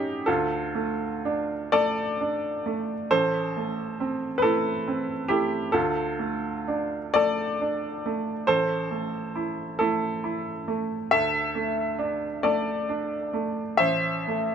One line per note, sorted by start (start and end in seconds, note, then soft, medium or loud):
0.00 0.23 F#2 medium
0.00 0.30 A3 soft
0.00 0.30 C#4 soft
0.00 0.24 D#4 medium
0.00 0.30 F#4 soft
0.00 0.26 G4 medium
0.26 3.07 D2 medium
0.26 1.69 F4 medium
0.26 1.71 A4 medium
0.75 1.54 A3 soft
1.25 2.01 D4 medium
1.72 2.47 A3 soft
1.72 3.06 A4 medium
1.72 3.10 D5 medium
2.21 2.93 D4 soft
2.66 3.11 A3 medium
3.11 5.71 A1 medium
3.11 4.32 A4 medium
3.11 4.36 C5 medium
3.57 4.26 A3 soft
4.00 4.70 C4 medium
4.38 4.44 B4 medium
4.42 5.13 A3 medium
4.42 5.26 E4 medium
4.42 5.30 A4 medium
4.88 5.57 C4 soft
5.28 5.74 A3 soft
5.28 5.71 E4 medium
5.28 5.73 G4 medium
5.72 8.44 D2 medium
5.72 7.11 F4 medium
5.72 7.14 A4 medium
6.19 6.96 A3 soft
6.68 7.42 D4 medium
7.14 7.87 A3 medium
7.14 8.44 A4 medium
7.14 8.47 D5 medium
7.61 8.31 D4 soft
8.06 8.49 A3 soft
8.47 11.09 A1 medium
8.47 9.76 A4 medium
8.47 9.79 C5 medium
8.91 9.62 A3 soft
9.36 9.78 E4 soft
9.79 10.51 A3 medium
9.79 10.22 E4 medium
9.79 10.68 A4 medium
10.24 10.95 E4 medium
10.68 11.12 A3 medium
11.11 13.75 D2 medium
11.11 12.40 A4 medium
11.11 12.44 E5 medium
11.55 12.26 A3 soft
11.99 12.70 D4 medium
12.43 13.15 A3 medium
12.43 13.75 A4 medium
12.43 13.78 D5 medium
12.89 13.61 D4 medium
13.33 13.79 A3 medium
13.77 14.55 A1 medium
13.77 14.55 C5 medium
13.77 14.55 E5 medium
14.28 14.55 A3 soft